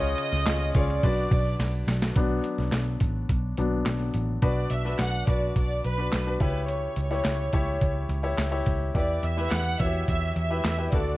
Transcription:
Already playing: C#2 C#3 C#4 F4 G#4 C#5 D#5
0.04 shaker
0.18 ride, shaker
0.32 C#2, snare, shaker
0.47 C#2 C#4 F4 G#4 C#5, snare, clap, ride, shaker
0.60 shaker
0.75 C#2 C#4 F4 G#4 C#5 D5, kick, ride, shaker
0.89 ride, shaker
1.03 B1 B2 D4 F#4 B4 D5, kick, ride, shaker
1.18 shaker
1.31 B1, kick, ride, shaker
1.45 shaker
1.59 B1, snare, ride, shaker
1.75 shaker
1.87 B1, snare, ride, shaker
2.02 snare, ride, shaker
2.16 B1 F#3 B3 D4, kick, closed hi-hat
2.44 closed hi-hat
2.59 B1, snare
2.73 B1, snare, clap, closed hi-hat
3.01 A1, kick, closed hi-hat
3.29 B1, kick, closed hi-hat
3.58 B1 F#3 B3 D4, closed hi-hat
3.86 B1, snare, clap, closed hi-hat
4.14 A1, closed hi-hat
4.42 B1 B2 D4 F#4 B4 D5, kick, closed hi-hat
4.70 B1 E5, closed hi-hat
4.85 D4 F#4 B4, snare
4.99 B1 F#5, snare, clap, closed hi-hat
5.27 B1 D4 F#4 B4 D5, kick, closed hi-hat
5.56 B1 D5, kick, closed hi-hat
5.84 B1 B4, closed hi-hat
5.97 D4 F#4 B4
6.12 B1, snare, clap, closed hi-hat
6.26 D4 F#4 B4
6.40 C#2 C#3 E4 G4 B4 C#5, kick, closed hi-hat
6.68 C#5, closed hi-hat
6.96 C#2, closed hi-hat
7.11 E4 G4 C#5, snare
7.25 C#2, snare, clap, closed hi-hat
7.53 C#2 E4 G4 C#5, kick, closed hi-hat
7.82 C#2, kick, closed hi-hat
8.09 C#2, closed hi-hat
8.24 E4 G4 C#5
8.38 C#2, snare, clap, closed hi-hat
8.52 E4 G4 C#5
8.66 C#2, kick, closed hi-hat
8.95 E2 E3 E4 G4 B4 D5, kick, closed hi-hat
9.23 E2 E5, closed hi-hat
9.37 E4 G4 B4, snare
9.51 E2 F#5, snare, clap, closed hi-hat
9.79 E2 E4 F#4 C#5 E5, kick, closed hi-hat
9.86 G4
10.08 E2 E5, kick, closed hi-hat
10.36 E2 E5, closed hi-hat
10.51 E4 G4 B4
10.64 E2, snare, clap, closed hi-hat
10.78 E4 G4 B4
10.92 D2 D3 D4 F#4 A4 D5, kick, closed hi-hat

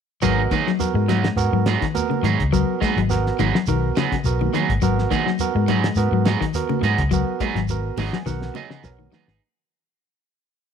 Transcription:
0.22 G#1 F#3 B3 D#4 F#4 G#4 A#4, muted clean electric guitar stroke, kick, closed hi-hat, shekere
0.51 D#3 F#3 B3 D#4 G#4, kick, closed hi-hat, high conga, shekere
0.67 F#3, snare
0.79 B3 F#4 A#4, closed hi-hat, low conga, shekere
0.94 G#2 G#3
1.08 F#3 B3 D#4, snare, closed hi-hat, high conga, low conga, shekere
1.24 G#3, snare, closed hi-hat
1.36 G#2 B3 F#4 A#4, closed hi-hat, shekere
1.52 G#2 F#3
1.66 F#3 B3 D#4 G#4, snare, closed hi-hat, high conga, shekere
1.81 D#3, kick, snare, closed hi-hat
1.94 B3 F#4 A#4, closed hi-hat, high conga, shekere
2.10 C#3, high conga
2.23 G#2 D#3 F#3 B3 D#4 G#4, closed hi-hat, high conga, low conga, shekere
2.40 C#2, kick, closed hi-hat
2.52 F#3 B3 F#4 A#4, kick, closed hi-hat, shekere
2.80 F#3 G#3 B3 D#4 G#4, kick, snare, closed hi-hat, high conga, shekere
2.96 G#1 F#3, closed hi-hat
3.10 B3 F#4 A#4, snare, closed hi-hat, shekere
3.26 snare
3.39 G#1 D#3 F#3 B3 D#4 G#4, closed hi-hat, high conga, low conga, shekere
3.55 F#3, snare
3.67 B1 D#3 B3 F#4 A#4, closed hi-hat, shekere
3.96 C#3 F#3 B3 D#4 G#4, snare, closed hi-hat, high conga, shekere
4.12 C#3, kick, snare, closed hi-hat
4.24 B1 B3 F#4 A#4, closed hi-hat, shekere
4.41 D#3, high conga
4.53 D#3 F#3 B3 D#4 G#4, closed hi-hat, high conga, low conga, shekere
4.69 G#1, kick, closed hi-hat
4.82 G#1 F#3 B3 F#4 A#4, kick, closed hi-hat, shekere
4.99 snare
5.10 D#3 F#3 B3 D#4 G#4, kick, closed hi-hat, high conga, shekere
5.26 F#3, snare
5.39 B3 F#4 A#4, closed hi-hat, low conga, shekere
5.55 G#2 G#3
5.68 F#3 B3 D#4 G#4, closed hi-hat, high conga, low conga, shekere
5.84 G#3, snare, closed hi-hat
5.95 G#2 B3 F#4 A#4, closed hi-hat, shekere
6.12 G#2 F#3
6.25 F#3 B3 D#4 G#4, snare, closed hi-hat, high conga, shekere
6.41 D#3, kick, closed hi-hat
6.54 B3 F#4 A#4, closed hi-hat, shekere
6.69 C#3, high conga
6.82 G#2 F#3 B3 D#4 G#4, muted clean electric guitar stroke, closed hi-hat, low conga, shekere
6.98 C#2, kick, closed hi-hat
7.11 F#3 B3 F#4 A#4, kick, closed hi-hat, shekere
7.40 F#3 G#3 B3 D#4 G#4, kick, closed hi-hat, high conga, shekere
7.55 G#1 F#3, snare, closed hi-hat
7.68 B3 F#4 A#4, closed hi-hat, shekere
7.97 G#1 D#3 F#3 B3 D#4 G#4 G#5, open hi-hat, high conga, low conga, shekere
8.13 F#3, snare
8.26 B1 D#3 B3 F#4 A#4 F#5, snare, shekere
8.42 snare
8.54 C#3 F#3 B3 D#4 G#4 D#5, high conga, shekere
8.70 C#3 B3 D#4 G#4, snare
8.84 B1 B3 F#4 A#4 C#5, snare, shekere
8.99 D#3, high conga
9.12 D#3 F#3 B3 D#4 G#4, snare, high conga, low conga, shekere
9.28 G#1 D#4 G#4, muted clean electric guitar stroke, snare

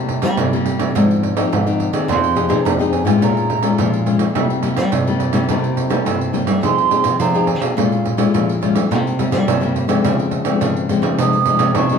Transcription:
Already playing: C3 G3 A#3 E4
0.09 pandeiro
0.22 G3 A#3 E4, pandeiro
0.37 G2 C3, pandeiro
0.53 G3 A#3 E4, pandeiro
0.66 pandeiro
0.80 C3, pandeiro
0.95 G#2 F3 C4 D#4, pandeiro
1.11 pandeiro
1.23 pandeiro
1.36 F3 C4 D#4, pandeiro
1.52 G#2 D#3, pandeiro
1.66 F3 C4 D#4, pandeiro
1.80 pandeiro
1.93 D#3 C4 D#4 G#4, pandeiro
2.08 F2 F3 C6, pandeiro
2.24 pandeiro
2.35 C4 D#4 G#4, pandeiro
2.49 C3 C4 D#4 G#4, pandeiro
2.65 F2 C3 A#5, pandeiro
2.79 C4 D#4 G#4, pandeiro
2.92 G#5, pandeiro
3.05 A2 G#3 C#4 F4 G#5, pandeiro
3.21 A#2 A#5, pandeiro
3.37 pandeiro
3.50 pandeiro
3.63 G#3 C#4 F4, pandeiro
3.78 A#2 F3, pandeiro
3.93 pandeiro
4.06 G#3 C#4 F4, pandeiro
4.19 A#2, pandeiro
4.35 C3 G3 A#3 E4, pandeiro
4.50 pandeiro
4.63 G3 A#3 E4, pandeiro
4.77 G3, pandeiro
4.92 G2 C3, pandeiro
5.07 G3 A#3 E4, pandeiro
5.20 pandeiro
5.33 C3 G3 A#3 E4, pandeiro
5.49 C3 G3 A#3 E4, pandeiro
5.64 pandeiro
5.77 pandeiro
5.90 G3 A#3 E4, pandeiro
6.05 G2 C3, pandeiro
6.21 pandeiro
6.33 G3 A#3 E4, pandeiro
6.47 G3, pandeiro
6.63 F3 C4 D#4 G#4 C6, pandeiro
6.78 pandeiro
6.90 C4 D#4 G#4, pandeiro
7.04 C3, pandeiro
7.20 C3 F3 A#5, pandeiro
7.34 C4 D#4 G#4, pandeiro
7.47 G#5, pandeiro
7.61 B2 F5, pandeiro
7.76 A#2 G#3 C#4 F4 F5, pandeiro
7.92 pandeiro
8.05 pandeiro
8.17 G#3 C#4 F4, pandeiro
8.34 A#2 F3, pandeiro
8.49 pandeiro
8.62 G#3 C#4 F4, pandeiro
8.75 G3, pandeiro
8.91 C3 G3 A#3 E4, pandeiro
9.07 pandeiro
9.19 G3 A#3 E4, pandeiro
9.31 G3 A#3 E4, pandeiro
9.47 G2 C3, pandeiro
9.61 G3 A#3 E4, pandeiro
9.76 pandeiro
9.88 C3 F3 G#3 C4, pandeiro
10.04 C#3, pandeiro
10.19 pandeiro
10.31 pandeiro
10.45 F3 G#3 C4, pandeiro
10.61 G#2 C#3, pandeiro
10.77 pandeiro
10.89 F3 G#3 C4, pandeiro
11.02 C#3, pandeiro
11.18 C3 F3 G#3 D#4 D#6, pandeiro
11.33 pandeiro
11.46 F3 G#3 D#4, pandeiro
11.59 C3, pandeiro
11.75 C3 C#6, pandeiro
11.89 F3 G#3 D#4, pandeiro

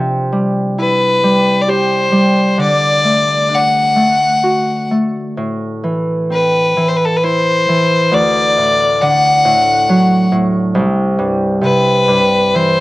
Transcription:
Already playing: C3 D4
0.32 G3
0.78 E4 B4
1.24 G3
1.62 D5
1.68 G4 C5
2.12 G3
2.58 D3
2.62 D5
3.04 A3
3.49 D4
3.55 F#5
3.96 A3
4.43 F#4
4.91 A3
5.37 A2
5.84 E3
6.30 C4 B4
6.77 E3
6.89 C5
6.97 B4
7.05 A4
7.17 B4
7.24 E4 C5
7.69 E3
8.12 D2 D5
8.57 A2
9.02 D3 F#5
9.45 A2
9.89 F#3
10.32 A2
10.75 C2
11.19 G2
11.61 C3 B4
12.08 G2
12.54 E3 C5

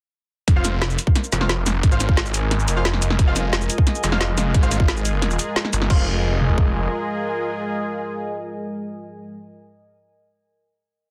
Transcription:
0.48 F1 A#4, kick, closed hi-hat
0.56 F4 C5 F5
0.65 snare, closed hi-hat, shaker
0.82 snare, closed hi-hat
0.90 shaker
0.99 closed hi-hat, shaker
1.04 D#5, kick
1.15 snare, closed hi-hat
1.24 G#5, shaker
1.32 F1, snare, closed hi-hat, shaker
1.41 F4 C5 F5, snare
1.49 snare, closed hi-hat
1.66 F1, snare, closed hi-hat, shaker
1.83 G#1, kick, closed hi-hat
1.92 F4 C5 F5, shaker
2.00 snare, closed hi-hat, shaker
2.09 kick
2.17 snare, closed hi-hat
2.26 shaker
2.34 closed hi-hat, shaker
2.51 snare, closed hi-hat
2.60 shaker
2.68 F1, closed hi-hat, shaker
2.76 F4 C5 F5
2.85 snare, closed hi-hat
2.94 snare
3.02 F1, closed hi-hat, shaker
3.10 snare
3.19 F1 G#3 F4 G#4, kick, closed hi-hat
3.27 F4 C5 F5
3.36 snare, closed hi-hat, shaker
3.53 snare, closed hi-hat
3.61 shaker
3.70 closed hi-hat, shaker
3.78 kick
3.87 snare, closed hi-hat
3.95 shaker
4.04 F1, snare, closed hi-hat, shaker
4.12 F4 C5 F5, snare
4.21 snare, closed hi-hat
4.38 F1, snare, closed hi-hat, shaker
4.54 G#1, kick, closed hi-hat
4.63 F4 C5 F5, shaker
4.71 snare, closed hi-hat, shaker
4.80 kick
4.88 snare, closed hi-hat
4.97 shaker
5.05 closed hi-hat, shaker
5.22 snare, closed hi-hat
5.31 shaker
5.39 closed hi-hat, shaker
5.56 snare, closed hi-hat
5.65 snare
5.73 G1, closed hi-hat, shaker
5.82 snare
5.90 F1 G#3 F4 G#4 A#4 C5 F5, kick, crash
5.95 D#5
6.00 G#5
6.41 mid tom
6.49 floor tom
6.58 kick

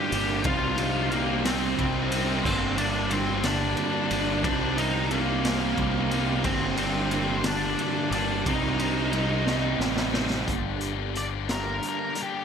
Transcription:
Already playing: G2 D3 G3 A#3 D4 G4 G5
0.12 G1 G2 D3 G3 A#3 D4, ride
0.44 C2 C3 G3 C4 F4 F5, kick, ride
0.48 D#4
0.78 C3 G3 C4, ride
0.82 D#4
1.12 C3 G3 A#3 C4 D#4 A#4, ride
1.45 C3 G3 C4 D#4 C5, snare, ride
1.79 C2, kick, ride
2.12 C3 G3 C4 D#4, ride
2.45 G1 G2 D3 G3 A#3 C4 D4 C5, kick, crash
2.78 G2 D3 G3 A#3 D4 D5, ride
3.11 G2 D3 G3 A#3 C4 D4 C5, ride
3.44 G2 D3 G3 A#3 D4 D5, snare, ride
3.77 ride
4.11 G1 G2 D3 G3 A#3 D4, ride
4.44 C2 C3 G3 C4 D4 D#4 D5, kick, ride
4.78 C3 G3 C4 D#4 D#5, ride
5.11 C3 G3 A#3 C4 D#4 A#4, ride
5.45 C3 G3 C4 D#4, snare, ride
5.78 C2, kick, ride
6.11 C3 G3 C4 D#4, ride
6.43 G1 G2 D3 G3 A#3 C4 D4 C5, kick, ride
6.77 G2 D3 G3 A#3 C4 D4 C5, ride
7.11 G2 D3 G3 A#3 D4, ride
7.38 C5
7.44 G2 D3 G3 A#3 D4 D5, snare, ride
7.79 ride
8.11 G1 G2 D3 G3 A#3 D4 D5, ride
8.45 C2 C3 G3 C4 D#4 D#5, kick, ride
8.79 C3 G3 C4 D#4, ride
9.12 C3 G3 C4 D#4, ride
9.46 C3 G3 C4 D#4, snare
9.79 A1, snare
9.97 snare
10.13 C3 G3 C4 D#4, snare
10.30 snare
10.47 G1 G2 D3 G3 A#3 D4, kick, closed hi-hat
10.81 G2 D3 G3 A#3 D4, closed hi-hat
11.15 G2 D3 G3 A#3 D4 D5, closed hi-hat
11.48 G2 D3 G3 A#3 D4 A#4, snare, closed hi-hat
11.82 G2 D3 G3 A#3 D4, closed hi-hat
11.89 A#4
12.15 G2 D3 G3 A#3 D4, closed hi-hat
12.23 G4

